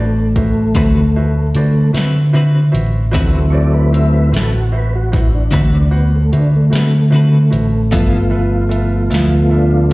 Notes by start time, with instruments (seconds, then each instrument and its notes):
Already playing: fingered electric bass A1, tonewheel organ A3, upright piano F#4 B4 C5 D5
0.36 tonewheel organ A3, upright piano F#4 B4 C5 E5, kick, closed hi-hat
0.75 fingered electric bass D2, clean electric guitar D3 C4 F#4 B4, upright piano F#4 B4 C5 E5, kick, closed hi-hat
1.16 upright piano F#4 B4 C5 E5
1.55 fingered electric bass D3, upright piano F#4 B4 C5 D5, closed hi-hat
1.93 fingered electric bass D3, upright piano F#4 B4 C5 E5, clean electric guitar B4, closed hi-hat
1.97 clean electric guitar C4 F#4, snare
2.33 clean electric guitar D3 C4 F#4 B4, upright piano F#4 B4 C5 E5
2.72 fingered electric bass A1, upright piano F#4 B4 C5 E5, closed hi-hat
3.11 fingered electric bass D2, clean electric guitar D3 C4 F#4 B4, tonewheel organ F#3 A3 C4 E4, upright piano F#4 B4 C5 E5, kick, closed hi-hat
3.50 upright piano F#4 B4 C5 D5, tonewheel organ C#5
3.55 tonewheel organ D5
3.74 tonewheel organ B4
3.92 upright piano F#4 B4 C5 E5, tonewheel organ E5, closed hi-hat
4.14 tonewheel organ B4
4.32 fingered electric bass A1, upright piano F#4 B4 C5 E5, clean electric guitar F#4 B4, tonewheel organ A4, closed hi-hat
4.36 clean electric guitar C4, snare
4.55 tonewheel organ F#4
4.72 upright piano F#4 B4 C5 E5
4.76 tonewheel organ B4
4.96 tonewheel organ F#4
5.12 tonewheel organ E4, upright piano F#4 B4 C5 F#5, kick, closed hi-hat
5.16 snare
5.34 tonewheel organ D4
5.51 fingered electric bass D2, clean electric guitar D3 C4 F#4 B4, upright piano F#4 B4 C5 E5, tonewheel organ F#4, kick, closed hi-hat
5.74 tonewheel organ D4
5.91 tonewheel organ B3, upright piano F#4 B4 C5 F#5
6.16 tonewheel organ A3
6.32 fingered electric bass D3, upright piano F#4 B4 C5 E5, closed hi-hat
6.37 tonewheel organ D4
6.56 tonewheel organ A3
6.70 fingered electric bass D3, tonewheel organ G#3, upright piano F#4 B4 C5 E5, clean electric guitar B4, closed hi-hat
6.75 tonewheel organ A3, clean electric guitar C4 F#4, snare
7.10 clean electric guitar D3 C4, upright piano F#4 B4 C5 E5
7.14 clean electric guitar F#4 B4
7.50 fingered electric bass A1, upright piano F#4 B4 C5 E5, closed hi-hat
7.91 clean electric guitar G2 F3 B3 E4, tonewheel organ F3 A3 B3 F4, upright piano F4 A4 B4 E5, kick, closed hi-hat
8.30 upright piano F4 A4 B4 E5
8.69 upright piano F4 A4 B4 E5, closed hi-hat
9.10 fingered electric bass D2, clean electric guitar F3 B3 E4, upright piano F4 A4 B4 E5, closed hi-hat
9.14 snare
9.49 tonewheel organ D4, upright piano F4 A4 B4 E5
9.90 upright piano F4 A4